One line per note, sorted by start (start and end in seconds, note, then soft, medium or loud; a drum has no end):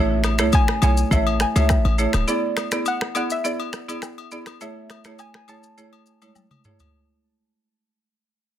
0.00 0.41 A1 loud
0.00 0.35 A3 medium
0.00 0.35 E4 medium
0.00 0.36 G#4 medium
0.00 0.36 C#5 loud
0.00 0.56 E5 loud
0.00 downlifter medium
0.24 finger snap medium
0.24 cross-stick medium
0.24 high agogo medium
0.24 shaker soft
0.39 0.61 C#2 medium
0.39 0.61 A3 medium
0.39 0.61 E4 medium
0.39 0.61 G#4 medium
0.39 0.61 C#5 medium
0.39 finger snap medium
0.39 cross-stick medium
0.39 shaker medium
0.53 0.83 G#5 loud
0.53 kick medium
0.53 high agogo medium
0.53 shaker medium
0.68 finger snap medium
0.68 cross-stick medium
0.82 1.04 B1 medium
0.82 1.04 A3 medium
0.82 1.04 E4 medium
0.82 1.04 G#4 medium
0.82 1.04 C#5 medium
0.82 1.13 G#5 loud
0.82 high agogo medium
0.82 shaker medium
0.97 shaker medium
1.11 1.45 A1 loud
1.11 1.33 A3 medium
1.11 1.33 E4 medium
1.11 1.33 G#4 medium
1.11 1.34 C#5 medium
1.11 1.42 E5 medium
1.11 kick loud
1.11 shaker medium
1.27 high agogo medium
1.40 1.48 G#5 loud
1.40 finger snap medium
1.40 cross-stick medium
1.40 shaker soft
1.56 1.78 C#2 medium
1.56 1.95 A3 medium
1.56 1.95 E4 medium
1.56 1.96 G#4 medium
1.56 1.96 C#5 medium
1.56 1.97 E5 medium
1.56 high agogo medium
1.56 shaker medium
1.69 finger snap medium
1.69 kick loud
1.69 cross-stick medium
1.69 low woodblock medium
1.69 shaker medium
1.85 2.07 A1 medium
1.85 high agogo medium
1.98 2.26 A3 medium
1.98 2.26 E4 medium
1.98 2.26 G#4 medium
1.98 2.26 C#5 medium
1.98 shaker soft
2.13 2.25 D1 medium
2.13 finger snap medium
2.13 cross-stick medium
2.13 high agogo medium
2.13 shaker medium
2.28 2.68 B3 medium
2.28 2.69 E4 medium
2.28 2.69 G#4 medium
2.28 2.69 D5 loud
2.28 2.89 D5 medium
2.28 shaker medium
2.57 finger snap medium
2.57 cross-stick medium
2.57 high agogo medium
2.57 shaker soft
2.72 2.93 B3 medium
2.72 2.94 E4 medium
2.72 2.94 G#4 medium
2.72 2.94 D5 medium
2.72 finger snap medium
2.72 cross-stick medium
2.72 shaker medium
2.86 3.16 F#5 loud
2.86 high agogo medium
2.86 shaker medium
3.01 finger snap medium
3.01 cross-stick medium
3.15 3.37 B3 medium
3.15 3.37 E4 medium
3.15 3.37 G#4 medium
3.15 3.37 D5 medium
3.15 3.23 F#5 loud
3.15 high agogo medium
3.15 shaker medium
3.30 3.45 E5 loud
3.30 shaker medium
3.44 3.66 B3 medium
3.44 3.66 E4 medium
3.44 3.66 G#4 medium
3.44 3.67 D5 medium
3.44 4.28 D5 medium
3.44 shaker medium
3.60 high agogo medium
3.73 finger snap medium
3.73 cross-stick medium
3.73 shaker soft
3.89 4.28 B3 medium
3.89 4.28 E4 medium
3.89 4.29 G#4 medium
3.89 4.29 D5 medium
3.89 high agogo medium
3.89 shaker medium
4.02 finger snap medium
4.02 cross-stick medium
4.02 low woodblock medium
4.02 shaker medium
4.18 high agogo medium
4.31 4.59 B3 medium
4.31 4.59 E4 medium
4.31 4.59 G#4 medium
4.31 4.59 D5 medium
4.31 shaker soft
4.46 finger snap medium
4.46 cross-stick medium
4.46 high agogo medium
4.46 shaker medium
4.61 5.02 A3 medium
4.61 5.02 E4 medium
4.61 5.02 G#4 medium
4.61 5.02 C#5 medium
4.61 5.21 E5 medium
4.61 shaker medium
4.90 finger snap medium
4.90 cross-stick medium
4.90 high agogo medium
4.90 shaker soft
5.05 5.27 A3 medium
5.05 5.27 E4 medium
5.05 5.27 G#4 medium
5.05 5.27 C#5 medium
5.05 finger snap medium
5.05 cross-stick medium
5.05 shaker medium
5.19 5.34 G#5 loud
5.19 high agogo medium
5.19 low woodblock medium
5.19 shaker medium
5.34 5.48 G#5 medium
5.34 finger snap medium
5.34 cross-stick medium
5.48 5.70 A3 medium
5.48 5.70 E4 medium
5.48 5.70 G#4 medium
5.48 5.71 C#5 medium
5.48 6.61 A5 loud
5.48 high agogo medium
5.48 shaker medium
5.63 shaker medium
5.77 5.99 A3 medium
5.77 6.00 E4 medium
5.77 6.00 G#4 medium
5.77 6.00 C#5 medium
5.77 shaker medium
5.93 high agogo medium
6.06 shaker soft
6.22 6.62 G#3 medium
6.22 6.62 A3 medium
6.22 6.62 E4 medium
6.22 6.62 C#5 medium
6.22 high agogo medium
6.22 shaker medium
6.35 high tom medium
6.35 low woodblock medium
6.35 shaker medium
6.51 mid tom medium
6.51 high agogo medium
6.64 6.92 A3 medium
6.64 6.92 E4 medium
6.64 6.92 G#4 medium
6.64 6.92 C#5 medium
6.64 mid tom medium
6.64 shaker soft
6.80 floor tom medium
6.80 high agogo medium
6.80 shaker medium